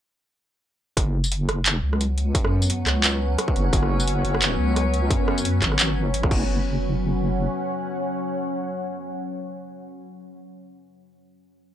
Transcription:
0.97 1.47 F#1 loud
0.97 6.29 F#3 medium
0.97 6.49 B3 medium
0.97 6.49 B4 medium
0.97 kick loud
0.97 cross-stick medium
0.97 closed hi-hat medium
1.24 tambourine medium
1.32 6.31 C#4 medium
1.32 closed hi-hat medium
1.48 1.82 F#1 loud
1.48 cross-stick medium
1.48 closed hi-hat soft
1.64 6.32 F#5 medium
1.64 clap loud
1.64 closed hi-hat medium
1.70 6.32 C#5 medium
1.83 2.33 C#2 loud
1.93 cross-stick medium
2.01 closed hi-hat medium
2.18 closed hi-hat soft
2.34 2.85 F#2 loud
2.34 kick loud
2.34 closed hi-hat medium
2.45 cross-stick medium
2.62 tambourine medium
2.70 closed hi-hat medium
2.86 3.37 C#2 loud
2.86 cross-stick medium
2.86 clap medium
2.86 closed hi-hat soft
3.04 clap loud
3.04 closed hi-hat medium
3.04 tambourine medium
3.38 cross-stick medium
3.38 closed hi-hat medium
3.48 kick loud
3.55 3.71 F#1 loud
3.55 closed hi-hat soft
3.73 4.23 F#1 loud
3.73 kick loud
3.73 closed hi-hat medium
3.83 cross-stick medium
4.00 tambourine medium
4.08 closed hi-hat medium
4.24 4.57 F#1 loud
4.24 closed hi-hat soft
4.35 cross-stick medium
4.42 clap loud
4.42 closed hi-hat medium
4.58 5.09 C#2 loud
4.76 cross-stick medium
4.76 closed hi-hat medium
4.94 closed hi-hat soft
5.10 5.61 F#2 loud
5.10 kick loud
5.10 closed hi-hat medium
5.28 cross-stick medium
5.38 tambourine medium
5.45 closed hi-hat medium
5.62 6.13 G#1 loud
5.62 kick medium
5.62 clap medium
5.62 closed hi-hat soft
5.72 cross-stick medium
5.79 clap loud
5.79 closed hi-hat medium
5.79 tambourine medium
6.13 6.30 G#1 loud
6.13 closed hi-hat medium
6.23 kick loud
6.23 cross-stick medium
6.31 7.48 F#1 loud
6.31 10.00 F#3 medium
6.31 kick loud
6.31 crash medium
6.37 10.00 C#4 medium
6.59 10.00 C#5 medium
6.64 10.00 F#5 medium

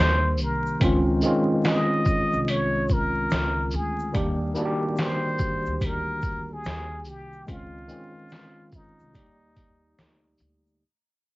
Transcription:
0.00 0.41 D#2 medium
0.00 0.41 C5 loud
0.00 clap medium
0.38 shaker soft
0.41 0.79 C2 loud
0.41 0.80 A#4 medium
0.41 shaker soft
0.66 shaker soft
0.80 1.21 C#2 loud
0.80 1.13 D#3 medium
0.80 1.13 G#3 medium
0.80 1.14 C4 medium
0.80 1.14 C#4 medium
0.80 1.15 F4 loud
0.80 kick loud
0.80 closed hi-hat medium
0.80 shaker medium
1.22 2.40 D#3 medium
1.22 2.41 G#3 medium
1.22 shaker medium
1.24 2.41 C4 medium
1.24 2.42 C#4 medium
1.24 2.42 F4 medium
1.24 shaker soft
1.64 2.52 D#5 loud
1.64 snare loud
1.64 clap medium
1.64 closed hi-hat medium
1.64 shaker medium
2.05 kick medium
2.05 shaker medium
2.07 shaker soft
2.33 3.28 C2 medium
2.33 shaker soft
2.48 2.94 C#5 loud
2.48 closed hi-hat medium
2.48 shaker medium
2.88 kick medium
2.88 shaker soft
2.92 3.77 A#4 loud
3.30 3.71 C#2 loud
3.30 snare loud
3.30 clap medium
3.30 closed hi-hat medium
3.30 shaker medium
3.71 shaker soft
3.73 4.13 D2 loud
3.73 4.16 G#4 medium
3.73 shaker soft
3.99 shaker medium
4.12 4.54 D#2 loud
4.12 4.46 D#3 medium
4.12 4.46 G3 medium
4.12 4.47 A#3 medium
4.12 4.47 D4 medium
4.12 kick loud
4.12 closed hi-hat medium
4.12 shaker medium
4.17 4.48 G4 medium
4.54 5.73 D#3 medium
4.54 5.73 G3 medium
4.54 5.74 A#3 medium
4.54 5.74 D4 medium
4.54 shaker medium
4.59 4.66 F#4 medium
4.65 5.78 G4 loud
4.97 snare loud
4.97 clap medium
4.97 closed hi-hat medium
4.97 shaker medium
5.02 5.87 C5 loud
5.39 kick medium
5.39 shaker soft
5.39 shaker medium
5.66 6.61 D2 medium
5.66 shaker medium
5.81 kick medium
5.81 closed hi-hat medium
5.81 shaker medium
5.85 6.55 A#4 loud
6.22 kick medium
6.22 shaker soft
6.53 7.10 G#4 loud
6.64 7.07 D#2 loud
6.64 snare loud
6.64 clap medium
6.64 closed hi-hat medium
6.64 shaker medium
7.05 shaker soft
7.07 7.46 C2 loud
7.07 7.52 G4 loud
7.07 shaker soft
7.33 shaker soft
7.46 7.88 C#2 loud
7.46 7.79 D#3 medium
7.46 7.80 G#3 medium
7.46 7.80 C4 medium
7.46 7.81 C#4 medium
7.46 kick loud
7.46 closed hi-hat medium
7.46 shaker medium
7.50 7.81 F4 medium
7.50 8.77 F4 loud
7.87 9.06 D#3 medium
7.87 9.07 G#3 medium
7.87 9.07 C4 medium
7.87 9.08 C#4 medium
7.87 shaker medium
7.92 9.08 F4 medium
8.30 snare loud
8.30 clap medium
8.30 closed hi-hat medium
8.30 shaker medium
8.72 10.41 D#4 medium
8.72 kick medium
8.72 shaker soft
8.72 shaker medium
9.00 9.14 C2 medium
9.00 shaker medium
9.13 9.94 D#2 medium
9.13 10.50 G3 medium
9.13 10.50 A#3 medium
9.13 10.49 D#4 medium
9.13 10.51 D5 medium
9.13 kick medium
9.13 closed hi-hat medium
9.13 shaker medium
9.17 10.51 G4 medium
9.56 kick medium
9.56 closed hi-hat soft
9.56 shaker soft
9.98 10.38 D2 medium
9.98 snare loud
9.98 clap medium
9.98 closed hi-hat medium
9.98 shaker medium
10.38 10.79 D2 loud
10.38 shaker soft
10.41 shaker soft
10.67 shaker soft

